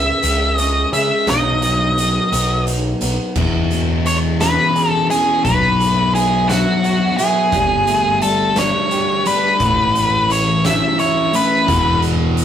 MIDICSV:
0, 0, Header, 1, 6, 480
1, 0, Start_track
1, 0, Tempo, 693642
1, 883, Time_signature, 6, 3, 24, 8
1, 8615, End_track
2, 0, Start_track
2, 0, Title_t, "Lead electric guitar"
2, 0, Program_c, 0, 29
2, 0, Note_on_c, 0, 76, 103
2, 393, Note_off_c, 0, 76, 0
2, 393, Note_on_c, 0, 75, 103
2, 619, Note_off_c, 0, 75, 0
2, 646, Note_on_c, 0, 76, 84
2, 892, Note_off_c, 0, 76, 0
2, 898, Note_on_c, 0, 75, 83
2, 1825, Note_off_c, 0, 75, 0
2, 2813, Note_on_c, 0, 73, 81
2, 2877, Note_off_c, 0, 73, 0
2, 3051, Note_on_c, 0, 71, 81
2, 3390, Note_off_c, 0, 71, 0
2, 3390, Note_on_c, 0, 69, 81
2, 3502, Note_off_c, 0, 69, 0
2, 3532, Note_on_c, 0, 68, 70
2, 3753, Note_off_c, 0, 68, 0
2, 3769, Note_on_c, 0, 71, 81
2, 4252, Note_off_c, 0, 71, 0
2, 4255, Note_on_c, 0, 68, 73
2, 4486, Note_on_c, 0, 66, 73
2, 4498, Note_off_c, 0, 68, 0
2, 4960, Note_on_c, 0, 68, 82
2, 4981, Note_off_c, 0, 66, 0
2, 5656, Note_off_c, 0, 68, 0
2, 5689, Note_on_c, 0, 69, 84
2, 5935, Note_off_c, 0, 69, 0
2, 5940, Note_on_c, 0, 73, 89
2, 6412, Note_on_c, 0, 71, 89
2, 6427, Note_off_c, 0, 73, 0
2, 7140, Note_on_c, 0, 73, 84
2, 7150, Note_off_c, 0, 71, 0
2, 7374, Note_off_c, 0, 73, 0
2, 7377, Note_on_c, 0, 76, 86
2, 7606, Note_off_c, 0, 76, 0
2, 7609, Note_on_c, 0, 73, 96
2, 7854, Note_off_c, 0, 73, 0
2, 7856, Note_on_c, 0, 71, 81
2, 8302, Note_off_c, 0, 71, 0
2, 8615, End_track
3, 0, Start_track
3, 0, Title_t, "Clean electric guitar"
3, 0, Program_c, 1, 27
3, 0, Note_on_c, 1, 49, 73
3, 0, Note_on_c, 1, 52, 64
3, 160, Note_on_c, 1, 56, 64
3, 403, Note_on_c, 1, 61, 69
3, 634, Note_off_c, 1, 56, 0
3, 642, Note_on_c, 1, 56, 70
3, 644, Note_off_c, 1, 49, 0
3, 880, Note_on_c, 1, 47, 76
3, 883, Note_off_c, 1, 56, 0
3, 884, Note_off_c, 1, 52, 0
3, 884, Note_off_c, 1, 61, 0
3, 1125, Note_on_c, 1, 54, 70
3, 1357, Note_off_c, 1, 54, 0
3, 1365, Note_on_c, 1, 54, 63
3, 1608, Note_on_c, 1, 59, 67
3, 1848, Note_on_c, 1, 63, 66
3, 2078, Note_off_c, 1, 59, 0
3, 2084, Note_off_c, 1, 47, 0
3, 2087, Note_on_c, 1, 59, 69
3, 2326, Note_off_c, 1, 54, 0
3, 2326, Note_off_c, 1, 59, 0
3, 2327, Note_off_c, 1, 63, 0
3, 2331, Note_on_c, 1, 40, 64
3, 2570, Note_on_c, 1, 47, 60
3, 2809, Note_on_c, 1, 52, 65
3, 3051, Note_on_c, 1, 61, 61
3, 3291, Note_on_c, 1, 68, 73
3, 3521, Note_off_c, 1, 61, 0
3, 3529, Note_on_c, 1, 61, 69
3, 3530, Note_off_c, 1, 40, 0
3, 3763, Note_off_c, 1, 47, 0
3, 3768, Note_off_c, 1, 61, 0
3, 3769, Note_off_c, 1, 52, 0
3, 3769, Note_off_c, 1, 68, 0
3, 3771, Note_on_c, 1, 47, 67
3, 4013, Note_on_c, 1, 52, 62
3, 4244, Note_off_c, 1, 52, 0
3, 4252, Note_on_c, 1, 52, 64
3, 4488, Note_on_c, 1, 64, 65
3, 4730, Note_on_c, 1, 66, 74
3, 4965, Note_off_c, 1, 64, 0
3, 4970, Note_off_c, 1, 47, 0
3, 4974, Note_on_c, 1, 64, 74
3, 5207, Note_off_c, 1, 52, 0
3, 5208, Note_off_c, 1, 66, 0
3, 5210, Note_on_c, 1, 55, 74
3, 5211, Note_off_c, 1, 64, 0
3, 5451, Note_on_c, 1, 57, 64
3, 5687, Note_off_c, 1, 55, 0
3, 5695, Note_on_c, 1, 55, 64
3, 5932, Note_on_c, 1, 62, 66
3, 6169, Note_on_c, 1, 67, 72
3, 6404, Note_off_c, 1, 62, 0
3, 6413, Note_on_c, 1, 62, 68
3, 6648, Note_off_c, 1, 57, 0
3, 6648, Note_off_c, 1, 67, 0
3, 6649, Note_off_c, 1, 62, 0
3, 6650, Note_off_c, 1, 55, 0
3, 6651, Note_on_c, 1, 45, 75
3, 6891, Note_on_c, 1, 52, 62
3, 7119, Note_off_c, 1, 52, 0
3, 7127, Note_on_c, 1, 52, 65
3, 7365, Note_on_c, 1, 61, 65
3, 7607, Note_on_c, 1, 64, 74
3, 7842, Note_off_c, 1, 61, 0
3, 7847, Note_off_c, 1, 45, 0
3, 7850, Note_on_c, 1, 61, 68
3, 8085, Note_off_c, 1, 52, 0
3, 8085, Note_off_c, 1, 64, 0
3, 8087, Note_off_c, 1, 61, 0
3, 8615, End_track
4, 0, Start_track
4, 0, Title_t, "Distorted electric guitar"
4, 0, Program_c, 2, 30
4, 2325, Note_on_c, 2, 40, 79
4, 2334, Note_on_c, 2, 47, 82
4, 2338, Note_on_c, 2, 52, 72
4, 3512, Note_off_c, 2, 40, 0
4, 3517, Note_off_c, 2, 47, 0
4, 3517, Note_off_c, 2, 52, 0
4, 3526, Note_on_c, 2, 52, 80
4, 3537, Note_on_c, 2, 47, 67
4, 3545, Note_on_c, 2, 40, 63
4, 3752, Note_off_c, 2, 52, 0
4, 3758, Note_off_c, 2, 47, 0
4, 3762, Note_off_c, 2, 40, 0
4, 3771, Note_on_c, 2, 47, 68
4, 3780, Note_on_c, 2, 54, 88
4, 3787, Note_on_c, 2, 59, 87
4, 4955, Note_off_c, 2, 47, 0
4, 4955, Note_off_c, 2, 59, 0
4, 4959, Note_off_c, 2, 54, 0
4, 4963, Note_on_c, 2, 59, 70
4, 4973, Note_on_c, 2, 54, 78
4, 4978, Note_on_c, 2, 47, 62
4, 5191, Note_off_c, 2, 59, 0
4, 5196, Note_off_c, 2, 54, 0
4, 5198, Note_off_c, 2, 47, 0
4, 5203, Note_on_c, 2, 43, 78
4, 5214, Note_on_c, 2, 50, 81
4, 5220, Note_on_c, 2, 55, 86
4, 6390, Note_off_c, 2, 43, 0
4, 6396, Note_off_c, 2, 50, 0
4, 6399, Note_off_c, 2, 55, 0
4, 6406, Note_on_c, 2, 55, 73
4, 6415, Note_on_c, 2, 50, 61
4, 6422, Note_on_c, 2, 43, 60
4, 6632, Note_off_c, 2, 55, 0
4, 6636, Note_off_c, 2, 50, 0
4, 6640, Note_off_c, 2, 43, 0
4, 6642, Note_on_c, 2, 45, 79
4, 6652, Note_on_c, 2, 52, 86
4, 6660, Note_on_c, 2, 57, 86
4, 7828, Note_off_c, 2, 45, 0
4, 7831, Note_off_c, 2, 57, 0
4, 7839, Note_on_c, 2, 57, 75
4, 7847, Note_off_c, 2, 52, 0
4, 7849, Note_on_c, 2, 52, 59
4, 7855, Note_on_c, 2, 45, 61
4, 8067, Note_off_c, 2, 57, 0
4, 8075, Note_off_c, 2, 45, 0
4, 8075, Note_on_c, 2, 40, 77
4, 8086, Note_on_c, 2, 47, 81
4, 8091, Note_off_c, 2, 52, 0
4, 8093, Note_on_c, 2, 52, 93
4, 8615, Note_off_c, 2, 40, 0
4, 8615, Note_off_c, 2, 47, 0
4, 8615, Note_off_c, 2, 52, 0
4, 8615, End_track
5, 0, Start_track
5, 0, Title_t, "Picked electric bass"
5, 0, Program_c, 3, 34
5, 161, Note_on_c, 3, 37, 87
5, 578, Note_off_c, 3, 37, 0
5, 639, Note_on_c, 3, 49, 81
5, 745, Note_off_c, 3, 49, 0
5, 877, Note_on_c, 3, 35, 83
5, 1505, Note_off_c, 3, 35, 0
5, 1604, Note_on_c, 3, 35, 95
5, 2021, Note_off_c, 3, 35, 0
5, 2086, Note_on_c, 3, 35, 84
5, 2190, Note_off_c, 3, 35, 0
5, 2323, Note_on_c, 3, 40, 95
5, 3156, Note_off_c, 3, 40, 0
5, 3769, Note_on_c, 3, 35, 83
5, 4600, Note_off_c, 3, 35, 0
5, 5206, Note_on_c, 3, 31, 96
5, 6038, Note_off_c, 3, 31, 0
5, 6643, Note_on_c, 3, 33, 87
5, 7475, Note_off_c, 3, 33, 0
5, 8083, Note_on_c, 3, 28, 92
5, 8615, Note_off_c, 3, 28, 0
5, 8615, End_track
6, 0, Start_track
6, 0, Title_t, "Drums"
6, 157, Note_on_c, 9, 42, 90
6, 226, Note_off_c, 9, 42, 0
6, 400, Note_on_c, 9, 42, 64
6, 469, Note_off_c, 9, 42, 0
6, 644, Note_on_c, 9, 42, 72
6, 713, Note_off_c, 9, 42, 0
6, 880, Note_on_c, 9, 42, 80
6, 882, Note_on_c, 9, 38, 96
6, 949, Note_off_c, 9, 42, 0
6, 951, Note_off_c, 9, 38, 0
6, 1121, Note_on_c, 9, 42, 69
6, 1190, Note_off_c, 9, 42, 0
6, 1368, Note_on_c, 9, 42, 64
6, 1437, Note_off_c, 9, 42, 0
6, 1608, Note_on_c, 9, 42, 82
6, 1677, Note_off_c, 9, 42, 0
6, 1847, Note_on_c, 9, 42, 60
6, 1916, Note_off_c, 9, 42, 0
6, 2081, Note_on_c, 9, 42, 62
6, 2151, Note_off_c, 9, 42, 0
6, 2322, Note_on_c, 9, 49, 92
6, 2324, Note_on_c, 9, 36, 93
6, 2391, Note_off_c, 9, 49, 0
6, 2393, Note_off_c, 9, 36, 0
6, 2565, Note_on_c, 9, 42, 73
6, 2634, Note_off_c, 9, 42, 0
6, 2807, Note_on_c, 9, 42, 64
6, 2877, Note_off_c, 9, 42, 0
6, 3048, Note_on_c, 9, 42, 95
6, 3050, Note_on_c, 9, 38, 96
6, 3117, Note_off_c, 9, 42, 0
6, 3120, Note_off_c, 9, 38, 0
6, 3291, Note_on_c, 9, 42, 65
6, 3360, Note_off_c, 9, 42, 0
6, 3531, Note_on_c, 9, 42, 66
6, 3600, Note_off_c, 9, 42, 0
6, 3770, Note_on_c, 9, 36, 88
6, 3772, Note_on_c, 9, 42, 85
6, 3840, Note_off_c, 9, 36, 0
6, 3841, Note_off_c, 9, 42, 0
6, 4016, Note_on_c, 9, 42, 71
6, 4085, Note_off_c, 9, 42, 0
6, 4255, Note_on_c, 9, 42, 72
6, 4324, Note_off_c, 9, 42, 0
6, 4494, Note_on_c, 9, 42, 84
6, 4497, Note_on_c, 9, 38, 104
6, 4563, Note_off_c, 9, 42, 0
6, 4566, Note_off_c, 9, 38, 0
6, 4734, Note_on_c, 9, 42, 56
6, 4803, Note_off_c, 9, 42, 0
6, 4972, Note_on_c, 9, 42, 67
6, 5041, Note_off_c, 9, 42, 0
6, 5205, Note_on_c, 9, 42, 76
6, 5207, Note_on_c, 9, 36, 98
6, 5275, Note_off_c, 9, 42, 0
6, 5276, Note_off_c, 9, 36, 0
6, 5447, Note_on_c, 9, 42, 64
6, 5516, Note_off_c, 9, 42, 0
6, 5685, Note_on_c, 9, 42, 64
6, 5754, Note_off_c, 9, 42, 0
6, 5923, Note_on_c, 9, 42, 85
6, 5925, Note_on_c, 9, 38, 105
6, 5992, Note_off_c, 9, 42, 0
6, 5995, Note_off_c, 9, 38, 0
6, 6165, Note_on_c, 9, 42, 63
6, 6234, Note_off_c, 9, 42, 0
6, 6405, Note_on_c, 9, 42, 65
6, 6474, Note_off_c, 9, 42, 0
6, 6642, Note_on_c, 9, 42, 78
6, 6645, Note_on_c, 9, 36, 97
6, 6711, Note_off_c, 9, 42, 0
6, 6714, Note_off_c, 9, 36, 0
6, 6888, Note_on_c, 9, 42, 70
6, 6957, Note_off_c, 9, 42, 0
6, 7128, Note_on_c, 9, 42, 75
6, 7197, Note_off_c, 9, 42, 0
6, 7366, Note_on_c, 9, 42, 90
6, 7369, Note_on_c, 9, 38, 111
6, 7436, Note_off_c, 9, 42, 0
6, 7438, Note_off_c, 9, 38, 0
6, 7604, Note_on_c, 9, 42, 62
6, 7673, Note_off_c, 9, 42, 0
6, 7843, Note_on_c, 9, 42, 70
6, 7912, Note_off_c, 9, 42, 0
6, 8085, Note_on_c, 9, 36, 94
6, 8086, Note_on_c, 9, 42, 84
6, 8154, Note_off_c, 9, 36, 0
6, 8155, Note_off_c, 9, 42, 0
6, 8320, Note_on_c, 9, 42, 72
6, 8389, Note_off_c, 9, 42, 0
6, 8561, Note_on_c, 9, 42, 68
6, 8615, Note_off_c, 9, 42, 0
6, 8615, End_track
0, 0, End_of_file